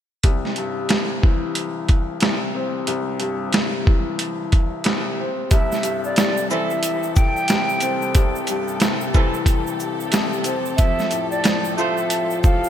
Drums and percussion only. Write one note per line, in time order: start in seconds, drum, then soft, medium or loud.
0.23 kick loud
0.23 closed hi-hat medium
0.45 snare soft
0.56 closed hi-hat medium
0.89 snare loud
0.89 closed hi-hat medium
1.23 kick loud
1.55 closed hi-hat medium
1.89 kick medium
1.89 closed hi-hat medium
2.20 snare loud
2.20 closed hi-hat medium
2.87 closed hi-hat medium
3.20 closed hi-hat medium
3.53 snare loud
3.53 closed hi-hat medium
3.87 kick loud
4.19 closed hi-hat medium
4.52 kick medium
4.52 closed hi-hat medium
4.84 snare loud
4.84 closed hi-hat medium
5.51 kick loud
5.51 closed hi-hat medium
5.51 shaker medium
5.72 snare soft
5.72 shaker medium
5.83 closed hi-hat medium
5.83 shaker medium
6.04 shaker soft
6.16 snare loud
6.16 closed hi-hat medium
6.16 shaker medium
6.37 shaker medium
6.50 shaker medium
6.70 shaker soft
6.83 closed hi-hat loud
6.83 shaker medium
7.03 shaker medium
7.16 kick medium
7.16 shaker medium
7.16 shaker soft
7.37 shaker soft
7.48 snare loud
7.48 closed hi-hat medium
7.48 shaker medium
7.69 shaker soft
7.80 closed hi-hat medium
7.80 shaker medium
7.80 shaker soft
8.02 shaker medium
8.15 kick loud
8.15 closed hi-hat medium
8.15 shaker medium
8.35 shaker medium
8.47 closed hi-hat medium
8.47 shaker medium
8.68 shaker soft
8.80 snare loud
8.80 closed hi-hat medium
8.80 shaker medium
9.01 shaker medium
9.14 kick loud
9.14 shaker medium
9.34 shaker soft
9.46 kick medium
9.46 closed hi-hat loud
9.46 shaker medium
9.67 shaker medium
9.80 shaker medium
9.80 shaker soft
10.00 shaker soft
10.12 snare loud
10.12 closed hi-hat medium
10.12 shaker medium
10.33 shaker soft
10.44 closed hi-hat medium
10.44 shaker medium
10.44 shaker soft
10.65 shaker soft
10.78 kick loud
10.78 closed hi-hat medium
10.78 shaker medium
10.99 snare soft
10.99 shaker medium
11.11 closed hi-hat medium
11.11 shaker medium
11.32 shaker soft
11.44 snare loud
11.44 closed hi-hat medium
11.44 shaker medium
11.65 shaker medium
11.78 shaker medium
11.98 shaker soft
12.10 closed hi-hat loud
12.10 shaker medium
12.30 shaker soft
12.43 kick medium
12.43 shaker medium
12.43 shaker soft
12.64 shaker medium